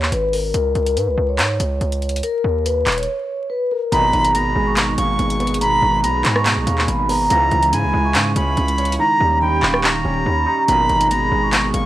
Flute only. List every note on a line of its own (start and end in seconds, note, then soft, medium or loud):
3.92 4.32 B5 loud
4.34 4.94 A#5 medium
4.98 5.57 C#6 medium
5.61 6.01 B5 loud
6.04 6.84 A#5 medium
7.30 7.70 A#5 loud
7.72 8.32 G#5 medium
8.36 8.95 B5 medium
8.99 9.39 A#5 loud
9.42 9.81 G5 medium
9.84 10.64 A#5 loud
10.68 11.08 B5 loud
11.10 11.70 A#5 medium
11.74 11.86 C#6 medium